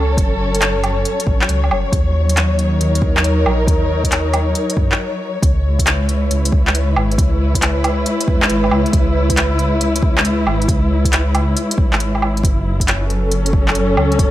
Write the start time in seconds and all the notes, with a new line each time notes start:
Already playing: C#2 F#3 C#4 A4 C#5
0.17 F#1, kick, closed hi-hat
0.55 closed hi-hat
0.62 clap, closed hi-hat
0.84 closed hi-hat, low woodblock
1.05 closed hi-hat
1.20 closed hi-hat
1.27 A1, kick
1.41 clap
1.49 C#2, closed hi-hat
1.64 low woodblock
1.71 F#1, low woodblock
1.92 D#2, kick, closed hi-hat
2.09 D#4
2.29 closed hi-hat
2.37 clap, closed hi-hat
2.59 closed hi-hat
2.66 A#4
2.80 D#2, closed hi-hat
2.95 closed hi-hat
3.02 D#2, kick
3.17 clap
3.24 closed hi-hat
3.46 A#1, low woodblock
3.67 D#2, kick, closed hi-hat
4.04 kick, closed hi-hat
4.12 clap, closed hi-hat
4.34 closed hi-hat, low woodblock
4.55 closed hi-hat
4.70 closed hi-hat
4.77 F#2, kick
4.92 clap
5.42 C#2 G#3, kick, closed hi-hat
5.66 E4
5.77 B4, kick, closed hi-hat
5.87 clap, closed hi-hat
6.09 closed hi-hat
6.31 C#2, closed hi-hat
6.45 closed hi-hat
6.52 C#2, kick
6.67 clap
6.75 closed hi-hat
6.96 G#1, low woodblock
7.12 closed hi-hat
7.18 C#2, kick, closed hi-hat
7.55 kick, closed hi-hat
7.62 clap, closed hi-hat
7.84 closed hi-hat, low woodblock
8.06 closed hi-hat
8.21 closed hi-hat
8.28 E2, kick
8.42 clap
8.50 G#1, closed hi-hat
8.64 low woodblock
8.71 C#2, low woodblock
8.86 closed hi-hat
8.93 C#2, kick, closed hi-hat
9.30 kick, closed hi-hat
9.37 clap, closed hi-hat
9.59 closed hi-hat
9.81 C#2, closed hi-hat
9.96 closed hi-hat
10.02 C#2, kick
10.18 clap
10.25 closed hi-hat
10.47 G#1, low woodblock
10.62 closed hi-hat
10.68 C#2, kick, closed hi-hat
11.05 kick, closed hi-hat
11.13 clap, closed hi-hat
11.35 closed hi-hat, low woodblock
11.57 closed hi-hat
11.71 closed hi-hat
11.78 B1, kick
11.93 G#1, clap
12.00 closed hi-hat
12.15 low woodblock
12.22 low woodblock
12.37 closed hi-hat
12.44 F#1 F#3, kick, closed hi-hat
12.80 C#4, kick, closed hi-hat
12.88 clap, closed hi-hat
13.10 A4, closed hi-hat
13.32 F#1 C#5, closed hi-hat
13.46 closed hi-hat
13.53 F#1, kick
13.68 clap
13.75 closed hi-hat
13.97 C#2, low woodblock
14.12 closed hi-hat
14.19 F#1, kick, closed hi-hat